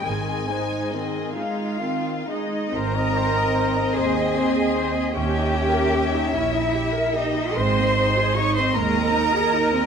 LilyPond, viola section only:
\new Staff \with { instrumentName = "Viola section" } { \time 6/8 \key aes \major \tempo 4. = 50 << { c'8 ees'8 c'8 ees'8 c'8 ees'8 | c''16 ees''16 c''16 ees''16 c''16 ees''16 c''16 ees''16 c''16 ees''16 c''16 ees''16 | des'16 ees'16 g'16 bes'16 g'16 ees'16 des'16 ees'16 g'16 bes'16 g'16 ees'16 | aes16 c'16 ees'16 aes'16 ees'16 c'16 aes16 c'16 ees'16 aes'16 ees'16 c'16 | } \\ { ees8 aes8 ees8 aes8 ees8 aes8 | c'2. | des'2. | c'2. | } >> }